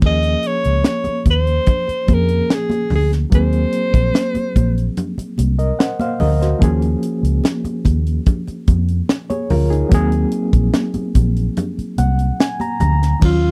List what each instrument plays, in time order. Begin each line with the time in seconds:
0.01 fingered electric bass D#2, reed electric piano A#3 C#4, kick, crash, muted conga
0.06 reed electric piano F3 G#4, alto saxophone D#5
0.23 closed hi-hat
0.43 closed hi-hat
0.47 alto saxophone C#5
0.64 fingered electric bass C#2, closed hi-hat
0.84 snare, closed hi-hat, high conga
0.88 alto saxophone C#5
1.04 muted fingered electric bass stroke, closed hi-hat, muted conga, high conga
1.25 fingered electric bass D#2, kick, closed hi-hat, high conga
1.31 alto saxophone C5
1.47 closed hi-hat
1.66 kick, closed hi-hat, muted conga, low conga
1.88 muted fingered electric bass stroke, closed hi-hat, muted conga
2.07 fingered electric bass F2, reed electric piano F3 A#3 C#4 G#4, kick, closed hi-hat, high conga
2.14 alto saxophone A#4
2.28 closed hi-hat
2.50 alto saxophone G#4, snare, closed hi-hat, muted conga
2.70 closed hi-hat, muted conga, high conga
2.90 fingered electric bass D2, open hi-hat, low conga
2.95 alto saxophone G#4
3.12 snare, closed hi-hat
3.30 fingered electric bass D#2, reed electric piano F#3 A#3 C4, kick, closed hi-hat
3.34 reed electric piano G#4, alto saxophone C5
3.52 closed hi-hat
3.72 closed hi-hat
3.94 fingered electric bass A#1, kick, closed hi-hat
4.14 snare, closed hi-hat, muted conga, high conga
4.34 muted fingered electric bass stroke, closed hi-hat, high conga
4.56 fingered electric bass A#1, kick, closed hi-hat, high conga
4.77 closed hi-hat
4.97 closed hi-hat, low conga
5.18 muted fingered electric bass stroke, closed hi-hat, muted conga
5.38 fingered electric bass C2, closed hi-hat, high conga
5.59 reed electric piano A#4 D#5, closed hi-hat
5.79 reed electric piano C5 F#5, snare, closed hi-hat, muted conga
5.99 reed electric piano C5 F5, closed hi-hat, muted conga, high conga
6.20 fingered electric bass D2, reed electric piano A#4 D#5, open hi-hat, low conga
6.42 reed electric piano F#4 C5, snare, closed hi-hat
6.59 fingered electric bass D#2, reed electric piano F3 A#3 C#4, kick, closed hi-hat
6.64 reed electric piano G#4
6.82 closed hi-hat, muted conga
7.03 closed hi-hat
7.23 fingered electric bass C#2, closed hi-hat
7.44 snare, closed hi-hat, muted conga, high conga
7.64 muted fingered electric bass stroke, closed hi-hat, high conga
7.85 fingered electric bass D#2, kick, closed hi-hat, high conga
8.06 closed hi-hat
8.26 kick, closed hi-hat, muted conga, low conga
8.47 muted fingered electric bass stroke, closed hi-hat, muted conga
8.67 fingered electric bass F2, kick, closed hi-hat, high conga
8.88 closed hi-hat
9.09 snare, closed hi-hat, muted conga
9.30 reed electric piano G#4 C#5, closed hi-hat, muted conga, high conga
9.50 fingered electric bass D2, reed electric piano F4 A#4, open hi-hat, low conga
9.70 reed electric piano D#4 G#4, closed hi-hat
9.89 fingered electric bass D#2, reed electric piano F#3 A#3 C4, kick, closed hi-hat
9.95 reed electric piano G#4
10.12 closed hi-hat, muted conga
10.31 closed hi-hat
10.53 fingered electric bass A#1, kick, closed hi-hat
10.74 snare, closed hi-hat, muted conga, high conga
10.94 muted fingered electric bass stroke, closed hi-hat, muted conga, high conga
11.15 fingered electric bass A#1, kick, closed hi-hat, high conga
11.36 closed hi-hat
11.57 closed hi-hat, low conga
11.78 muted fingered electric bass stroke, closed hi-hat
11.98 fingered electric bass C2, reed electric piano F#5, closed hi-hat, high conga
12.19 closed hi-hat
12.40 reed electric piano G#5, snare, closed hi-hat, muted conga
12.60 reed electric piano A#5, closed hi-hat, high conga
12.80 fingered electric bass D2, reed electric piano A#5, closed hi-hat, low conga
13.03 snare, closed hi-hat
13.20 fingered electric bass D#2, reed electric piano D#3 F#3 C#4, kick, crash, tambourine, muted conga
13.25 reed electric piano F4, alto saxophone F4